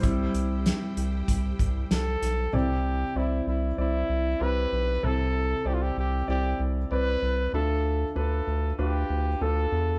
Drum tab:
HH |xxxxxxxx|--------|--------|--------|
SD |--o---oo|--------|--------|--------|
BD |o---oo--|--------|--------|--------|